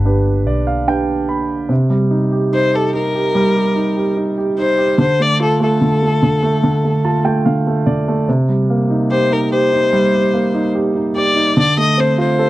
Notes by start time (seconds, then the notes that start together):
Already playing: G1 D3 D4 G4 B4
0.05 D4 G4 B4
0.47 B1 D5
0.67 F5
0.88 D4 G4 B4 G5
1.29 B5
1.69 C3
1.90 G3
2.11 D#4
2.32 G4
2.52 D#4 C5
2.74 G4 A4
2.94 D#4 A#4
3.15 G4
3.35 G3
3.56 G4
3.76 D#4
3.96 G4
4.17 D#4
4.38 G4
4.58 D#4 C5
4.78 G4
4.98 D3 C5
5.19 A3 D5
5.40 F4 A4
5.60 A3 A4
5.81 D3
6.02 A3
6.22 D3
6.43 A3
6.63 D3
6.84 A3
7.05 F4 A5
7.25 A3 G5
7.45 D3 F5
7.67 A3
7.86 D3 D5
8.08 A3
8.29 C3
8.49 G3
8.70 A#3
8.90 D#4
9.11 G4 C5
9.31 D#4 A#4
9.52 G4 C5
9.73 D#4
9.93 G3
10.13 G4
10.34 A#3
10.55 D#4
10.74 G4
10.95 D#4
11.15 G4 D5
11.35 D#4
11.57 D3 D5
11.77 A3 D#5
11.97 C4 C5
12.18 F4 C5
12.39 A4